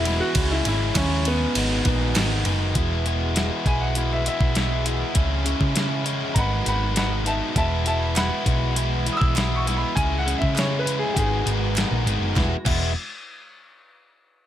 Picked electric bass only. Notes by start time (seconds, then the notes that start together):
Already playing: E1
0.35 C#2
0.66 G#1
0.95 D#2
1.56 G#1
1.86 A#1
2.17 G#1
2.46 F#1
2.75 E1
3.66 B1
4.40 B1
5.16 C#2
5.60 C#3
6.35 G#1
6.67 G#1
7.56 E1
8.46 B1
9.21 B1
9.96 C#2
10.41 C#3
11.17 G#1
11.46 G#1
11.91 A#1
12.06 G#1
12.20 F#1
12.36 E1
12.66 E1